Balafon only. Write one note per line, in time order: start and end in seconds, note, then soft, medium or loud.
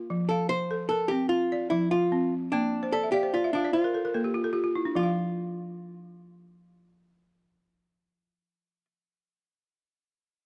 0.10 0.50 F3 medium
0.31 0.91 F5 medium
0.71 1.11 A4 medium
0.91 1.51 A#4 medium
1.11 1.51 C4 medium
1.52 2.12 D5 medium
1.71 2.12 F3 medium
1.91 2.52 F4 medium
2.12 2.52 C4 medium
2.53 2.93 A#3 medium
2.83 3.02 C5 medium
2.93 3.12 D5 medium
3.03 3.22 E5 medium
3.13 3.33 D5 medium
3.13 3.32 F5 medium
3.23 3.42 C5 medium
3.34 3.53 D5 medium
3.44 3.63 E5 medium
3.55 3.95 F4 medium
3.55 3.73 F5 medium
3.65 3.83 D5 medium
3.74 3.93 C5 medium
3.84 4.03 A#4 medium
3.94 4.13 A4 medium
4.05 4.23 A#4 medium
4.14 4.55 A#3 medium
4.14 4.33 A4 medium
4.24 4.43 G4 medium
4.34 4.52 F4 medium
4.44 4.63 A4 medium
4.53 4.62 F4 medium
4.53 4.73 G4 medium
4.64 4.83 F4 medium
4.75 4.94 E4 medium
4.85 5.04 D4 medium
4.95 8.88 F3 medium
4.95 8.90 F4 medium
5.03 8.92 F5 medium